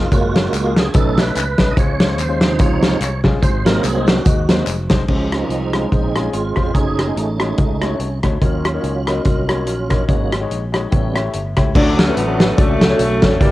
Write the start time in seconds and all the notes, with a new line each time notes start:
Already playing: F4
0.12 F#1 G#3 A#3 F4 F#4 C#5, kick, closed hi-hat, tambourine
0.34 A#3 F4 F#4 C#5, snare, closed hi-hat, tambourine
0.53 C#2, clap, closed hi-hat, tambourine
0.64 A#3 F4 F#4 G#4
0.77 G#4, snare, closed hi-hat, tambourine
0.94 B1 B2 A3 C#4 D#4 A4 B4, kick, closed hi-hat, tambourine
1.18 A3 C#4 D#4 B4 C#5, snare, closed hi-hat, tambourine
1.35 C#2, clap, closed hi-hat, tambourine
1.58 C2 A3 C#4 D#4 B4, kick, snare, closed hi-hat, tambourine
1.71 D#5
1.76 C#2 C#3 G#3 C#4 F4 C5 C#5, kick, closed hi-hat, tambourine
2.00 G#3 C#4 F4 C5, snare, closed hi-hat, tambourine
2.13 C#5
2.17 D#2 C5, clap, closed hi-hat, tambourine
2.28 G#3 C#4 F4 C5
2.41 C3 F3 D#4, snare, closed hi-hat, tambourine
2.59 C#2 G#3 C#4 F4 C5 C#5, kick, closed hi-hat, tambourine
2.82 G#3 C#4 F4 C5, snare, closed hi-hat, tambourine
3.00 C2, clap, closed hi-hat, tambourine
3.23 G#3 C#4 F4 G#4, kick, snare, closed hi-hat, tambourine
3.42 G#1 G#2 G#3 D#4 F#4 C5, kick, closed hi-hat, tambourine
3.65 F#3 G#3 A#3 C4 D#4 F#4 A#4 C5, snare, closed hi-hat, tambourine
3.83 C2 G#4, clap, closed hi-hat, tambourine
3.97 G#3 D#4 F#4 C5
4.06 F#4, snare, closed hi-hat, tambourine
4.25 D#2 G#3 D#4 F#4 D#5, kick, closed hi-hat, tambourine
4.49 F#3 G#3 A#3 C4 D#4 F#4 C5, snare, closed hi-hat, tambourine
4.67 F1, clap, closed hi-hat, tambourine
4.89 C2 G#3 D#4 F#4 C5, kick, snare, closed hi-hat, tambourine
5.08 C#2 C#3 F3 G#3 C#4 F4 C5, kick, crash
5.32 F3 C4 D#4, cross-stick, closed hi-hat
5.41 G#3 C#4 F4 A#4
5.49 C2 G#3 C4 D#4, closed hi-hat
5.73 G#3 C#4 F4 G#4, cross-stick, closed hi-hat
5.91 A#1 G#3 C#4 F4 C5, kick, closed hi-hat
6.15 G#3 C#4 F4 G#4, cross-stick, closed hi-hat
6.33 G#1 G#3 C4 F4, closed hi-hat
6.56 F1 G#3 C#4 F4 C5, kick, cross-stick, closed hi-hat
6.74 F#1 A3 C#4 D#4 F#4 G#4 C#5, kick, closed hi-hat
6.99 cross-stick, closed hi-hat
7.07 A3 D#4 F#4 G#4
7.16 A1 A3 C#4, closed hi-hat
7.39 G#3 A3 D#4 F#4 C#5, cross-stick, closed hi-hat
7.58 C#2 A3 D#4 F#4 D#5, kick, closed hi-hat
7.82 A3 D#4 F#4 C#5, cross-stick, closed hi-hat
8.00 C2, closed hi-hat
8.23 D2 A3 D#4 F#4 C#5, kick, cross-stick, closed hi-hat
8.42 D#2 D#3 F#3 A#3 C#4 D#4 F4 F#4 C#5, kick, closed hi-hat
8.65 cross-stick, closed hi-hat
8.74 A#3 D#4 F#4 C#5
8.83 C#2, closed hi-hat
9.07 A#3 D#4 F#4 D#5, cross-stick, closed hi-hat
9.24 C2 A#3 D#4 F#4 D#5, kick, closed hi-hat
9.47 A#3 D#4 F#4 C#5, cross-stick, closed hi-hat
9.66 A#1, closed hi-hat
9.89 A#3 D#4 F#4 C#5, kick, cross-stick, closed hi-hat
10.08 G#1 G#2 F#3 G#3 A#3 C#4 D#4 F#4 C#5, kick, closed hi-hat
10.32 cross-stick, closed hi-hat
10.40 G#3 D#4 F#4 C#5
10.50 A#1, closed hi-hat
10.72 G#3 D#4 F#4 C#5, cross-stick, closed hi-hat
10.90 A1 A2 G3 A3 B3 C#4 E4 G4 C#5, kick, closed hi-hat
11.14 A3 E4 G4 C#5, cross-stick, closed hi-hat
11.33 G1, closed hi-hat
11.56 C#2 A3 E4 G4 C#5, kick, cross-stick, closed hi-hat
11.74 D2 D3 E3 F#3 A3 C#4 D4 F#4 A4 C#5, kick, crash
11.80 F#3
11.99 C#4, snare, closed hi-hat
12.08 A3 C#4 D4 F#4 B4
12.17 A1 F#3 B3, closed hi-hat
12.27 A3 C#4 D4 F#4 B4
12.40 snare, closed hi-hat
12.56 C#2 C#3 F#3 A3 C#4 D4 F#4 D5, kick, closed hi-hat
12.81 snare, closed hi-hat
12.89 A3 C#4 D4 F#4 C#5
12.99 B1, closed hi-hat
13.22 F#1 A3 C#4 D4 F#4 C#5, kick, snare, closed hi-hat
13.40 G1 G2 E3 G3 A#3 D4 E4 G4 D5, kick, closed hi-hat